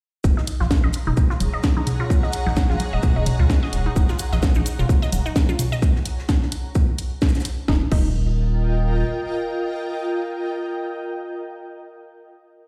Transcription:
0.24 D#1 G#4, kick, shaker
0.37 D#4, snare
0.45 A#5, closed hi-hat, shaker
0.60 A#1 F4, snare
0.65 C#5
0.71 kick, snare, shaker
0.84 A#1 D#5
0.93 closed hi-hat, shaker
1.07 D#1 D#4, high tom
1.16 F#5, kick, shaker
1.30 F4, snare
1.40 D#1, closed hi-hat, low conga, shaker
1.53 D#5
1.63 kick, snare, shaker
1.77 D#4, low conga
1.87 closed hi-hat, high tom, shaker
2.00 F4
2.10 kick, shaker
2.23 D#5, snare
2.32 closed hi-hat, shaker
2.46 A#1 D#4, snare, low conga
2.56 kick, snare, low conga, shaker
2.70 A#1 F4, snare
2.80 closed hi-hat, low conga, shaker
2.93 D#1 D#5
3.03 kick, high tom, shaker
3.16 D#1 D#4
3.26 closed hi-hat, high tom, shaker
3.39 C#2 F4
3.50 kick, snare, shaker
3.63 D#5, snare
3.73 D#1, closed hi-hat, shaker
3.86 D#4
3.96 D#1, kick, cabasa, shaker
4.09 F4, snare, cabasa
4.19 closed hi-hat, cabasa, shaker
4.33 A#1 D#5, snare, cabasa
4.42 kick, snare, cabasa, shaker
4.55 A#1 D#4, cabasa
4.66 closed hi-hat, cabasa, shaker
4.79 D#1 F4, high tom, cabasa
4.89 kick, cabasa, shaker
5.02 D#5, snare, cabasa
5.12 D#1, closed hi-hat, low conga, cabasa, shaker
5.26 D#4, cabasa
5.36 kick, snare, cabasa, shaker
5.49 F4, low conga, cabasa
5.59 closed hi-hat, high tom, cabasa, shaker
5.72 D#5, cabasa
5.82 kick, shaker
5.96 snare
6.06 closed hi-hat, shaker
6.19 snare
6.29 kick, snare, shaker
6.42 snare
6.52 closed hi-hat, shaker
6.75 kick, shaker
6.98 closed hi-hat, shaker
7.22 kick, snare, shaker
7.27 snare, shaker
7.35 snare, shaker
7.40 snare, shaker
7.45 closed hi-hat, shaker
7.68 D#1 D#4 F4, kick, snare
7.76 A#4
7.84 D#5
7.90 D#1 D#4 G5, kick, crash

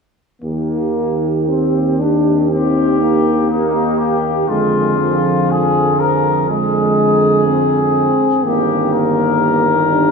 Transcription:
0.42 D#2 D#3 A#3 G4
1.48 C4
2.00 D4
2.51 C4 G4
3.01 A#3
3.50 D#4
3.98 G4
4.49 F2 D3 G#3 F4 G#4
4.98 F3
5.51 G#4
6.00 A#4
6.49 D3 G#3 G#4
7.47 C4
8.43 G1 D#3 A#3 G4
8.94 A#4
9.90 D4

